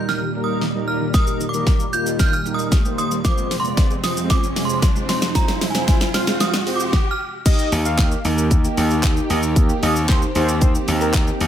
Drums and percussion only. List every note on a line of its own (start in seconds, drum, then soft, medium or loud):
0.09 snare medium
0.61 snare medium
1.14 kick loud
1.14 snare medium
1.14 shaker medium
1.27 shaker soft
1.41 shaker medium
1.54 shaker medium
1.67 kick loud
1.67 snare medium
1.67 shaker medium
1.80 shaker soft
1.93 shaker medium
2.06 shaker medium
2.19 kick loud
2.19 snare medium
2.19 shaker medium
2.33 shaker medium
2.46 shaker soft
2.59 shaker medium
2.72 kick loud
2.72 snare medium
2.72 shaker medium
2.85 shaker soft
2.98 shaker medium
3.11 shaker medium
3.25 kick loud
3.25 snare medium
3.25 closed hi-hat medium
3.25 shaker medium
3.38 shaker soft
3.51 snare medium
3.51 open hi-hat medium
3.51 shaker medium
3.64 shaker medium
3.77 kick loud
3.77 snare medium
3.77 closed hi-hat medium
3.77 shaker medium
3.90 shaker soft
4.04 snare medium
4.04 open hi-hat medium
4.04 shaker medium
4.17 shaker medium
4.30 kick loud
4.30 snare loud
4.30 closed hi-hat medium
4.30 shaker medium
4.43 shaker medium
4.56 snare medium
4.56 open hi-hat medium
4.56 shaker medium
4.69 shaker medium
4.82 kick loud
4.82 snare loud
4.82 closed hi-hat medium
4.82 shaker medium
4.96 shaker soft
5.09 snare loud
5.09 open hi-hat medium
5.09 shaker medium
5.22 snare loud
5.22 shaker medium
5.35 kick loud
5.35 snare loud
5.35 closed hi-hat medium
5.35 shaker medium
5.48 snare loud
5.48 shaker soft
5.61 snare loud
5.61 open hi-hat medium
5.61 shaker medium
5.75 snare loud
5.75 shaker medium
5.88 kick loud
5.88 snare loud
5.88 closed hi-hat medium
5.88 shaker medium
6.01 snare loud
6.01 shaker soft
6.14 snare loud
6.14 open hi-hat medium
6.14 shaker medium
6.27 snare loud
6.27 shaker medium
6.40 snare loud
6.40 closed hi-hat medium
6.40 shaker medium
6.54 snare loud
6.54 shaker medium
6.67 open hi-hat medium
6.67 shaker medium
6.80 shaker medium
6.93 kick loud
6.93 snare medium
7.46 kick loud
7.46 closed hi-hat medium
7.46 crash loud
7.46 shaker medium
7.59 shaker medium
7.72 open hi-hat medium
7.72 shaker medium
7.85 shaker medium
7.98 kick loud
7.98 snare loud
7.98 clap loud
7.98 closed hi-hat medium
7.98 shaker medium
8.11 shaker medium
8.25 open hi-hat medium
8.25 shaker medium
8.38 shaker medium
8.51 kick loud
8.51 closed hi-hat medium
8.51 shaker medium
8.64 shaker medium
8.77 open hi-hat medium
8.77 shaker medium
8.90 shaker medium
9.03 kick loud
9.03 snare medium
9.03 clap loud
9.03 closed hi-hat medium
9.03 shaker medium
9.17 shaker soft
9.30 open hi-hat medium
9.30 shaker medium
9.43 shaker medium
9.56 kick loud
9.56 closed hi-hat medium
9.56 shaker medium
9.69 shaker medium
9.83 open hi-hat medium
9.83 shaker medium
9.96 shaker medium
10.09 kick loud
10.09 snare loud
10.09 clap loud
10.09 closed hi-hat medium
10.09 shaker medium
10.22 shaker soft
10.35 open hi-hat medium
10.35 shaker medium
10.48 shaker medium
10.61 kick loud
10.61 closed hi-hat medium
10.61 shaker medium
10.75 shaker medium
10.88 open hi-hat medium
10.88 shaker medium
11.01 shaker medium
11.14 kick loud
11.14 snare medium
11.14 clap loud
11.14 closed hi-hat medium
11.14 shaker medium
11.27 shaker soft
11.41 open hi-hat medium
11.41 shaker medium